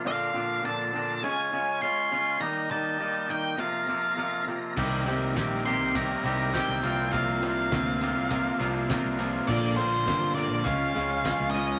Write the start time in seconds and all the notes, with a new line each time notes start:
Already playing: F5 C6
0.05 A#2 D3 F3 C4 D4 A#4 D5 F5
0.34 A#2 D3 F3 C4 D4
0.63 A#2 D3 F3 C4 D4 A5
0.94 A#2 D3 F3 C4 D4
1.22 C#3 G#3 C#4 F4 G#4 C#5 G#5
1.53 C#3 G#3 C#4 F4
1.82 C#3 G#3 C#4 F4 C6
2.12 C#3 G#3 C#4 F4
2.40 D#3 G3 A#3 D#4 G4 A#4 D#5 G5 A#5
2.70 D#3 G3 A#3 D#4 A5
2.99 D#3 G3 A#3 D#4
3.29 D#3 G3 A#3 D#4 G5
3.57 F2 C3 F3 A#3 C4 F4 C5 F5 A#5
3.87 F2 C3 F3 A#3 C4 F4
4.16 F2 C3 F3 A#3 C4 F4
4.46 F2 C3 F3 A#3 C4 F4
4.77 C2 C3 D#3 G3 A#3 C4 G4 D#5, kick, crash
4.92 closed hi-hat
5.06 C3 D#3 G3 A#3 C4 G4, closed hi-hat
5.21 closed hi-hat
5.36 A#1 C3 D#3 G3 A#3 C4 G4, kick, snare, closed hi-hat
5.52 closed hi-hat
5.66 C3 D#3 G3 A#3 C4 G4 C6, closed hi-hat
5.79 C2
5.94 C3 D#3 G3 A#3 C4 G4 A#5, kick, closed hi-hat
6.24 C2 C3 D#3 G3 A#3 C4 G4, closed hi-hat
6.52 C3 D#3 G3 A#3 C4 G4 G5, kick, snare, closed hi-hat
6.68 C2
6.82 C2 C3 F3 A#3 C4 F4 A#4 C5 F5 C6, closed hi-hat
7.11 C3 F3 A#3 C4 F4 F5, kick, closed hi-hat
7.41 C3 F3 A#3 C4 F4, closed hi-hat
7.72 D2 C3 F3 A#3 C4 F4, kick, snare, closed hi-hat
8.01 C3 F3 A#3 C4 F4, closed hi-hat
8.15 C2
8.29 C3 F3 A#3 C4 F4, kick, closed hi-hat
8.59 C2 C3 F3 A#3 C4 F4, closed hi-hat
8.75 closed hi-hat
8.89 C3 F3 A#3 C4 F4, kick, snare, closed hi-hat
9.04 C2, closed hi-hat
9.18 C3 F3 A#3 C4 F4, closed hi-hat
9.47 A#1 A#2 D3 A#3 C4 D4 F4 A#4 D5, kick, crash
9.64 closed hi-hat
9.76 A#2 D3 A#3 C4 D4 F4 C5, closed hi-hat
9.93 closed hi-hat
10.06 G1 A#2 D3 A#3 C4 D4 F4, kick, snare, closed hi-hat
10.22 closed hi-hat
10.35 A#2 D3 A#3 C4 D4 D5, closed hi-hat
10.39 F4
10.51 A#1
10.64 C#2 C#3 F3 G#3 C#4 F4 G#4 C#5 F5, kick, closed hi-hat
10.94 C#2 C#3 F3 G#3 C#4 F4, closed hi-hat
11.24 C#3 F3 G#3 C#4 F4, kick, snare, closed hi-hat
11.39 C#2
11.51 C#3 F3 G#3 D#5, closed hi-hat
11.55 C#4 F4